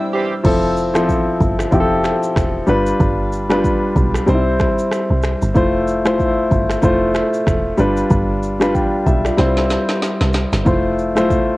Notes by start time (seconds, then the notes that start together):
Already playing: G3 C4 D4 E4 C5 E5 G5 E6
0.13 E3 G3 C4 G4
0.44 F1 F3 C4 E4 A4, kick, crash, shaker
0.77 shaker
0.94 F3 C4 E4 A4, finger snap, cross-stick, shaker
1.09 kick, shaker
1.41 G1, kick, shaker
1.59 finger snap, cross-stick, shaker
1.71 F1 F3 C4 E4 G4, kick, shaker
1.80 A4
2.04 finger snap, cross-stick, shaker
2.23 shaker
2.36 E1, finger snap, kick, cross-stick, shaker
2.67 G1 G3 D4 F4 B4, shaker
2.87 shaker
3.00 G1, kick, shaker
3.32 shaker
3.49 G3 D4 F4 B4, finger snap, cross-stick, shaker
3.64 kick, shaker
3.96 B1, kick, shaker
4.14 finger snap, cross-stick, shaker
4.26 C2 G3 C4 D#4 C5, shaker
4.35 E4
4.60 finger snap, kick, cross-stick, shaker
4.79 shaker
4.91 finger snap, cross-stick, shaker
5.10 C2
5.23 finger snap, cross-stick, shaker
5.42 G1, shaker
5.54 F1 A3 E4 F4 C5, kick, shaker
5.87 shaker
6.05 A3 E4 F4 C5, finger snap, cross-stick, shaker
6.20 kick, shaker
6.51 G1, kick, shaker
6.70 finger snap, cross-stick, shaker
6.82 F1 A3 E4 F4 C5, kick, shaker
7.15 finger snap, cross-stick, shaker
7.34 shaker
7.47 E1, finger snap, kick, cross-stick, shaker
7.78 G1 G3 D4 F4 B4, shaker
7.97 shaker
8.11 G1, kick, shaker
8.43 shaker
8.60 G3 D4 F4 B4, finger snap, cross-stick, shaker
8.74 B4 G5, kick, shaker
9.06 B1 G4 E5, kick, shaker
9.25 F4 D5, finger snap, cross-stick, shaker
9.37 C2 G3 C4 E4 C5, snare, shaker
9.57 snare
9.70 snare, shaker
9.89 snare, shaker
10.02 snare, shaker
10.21 C2, snare
10.33 snare, shaker
10.53 G1, snare, shaker
10.65 F1 A3 E4 F4 C5, kick, low conga, shaker
10.98 shaker
11.15 A3 E4 F4 C5, finger snap, cross-stick, high conga, shaker
11.30 kick, low conga, shaker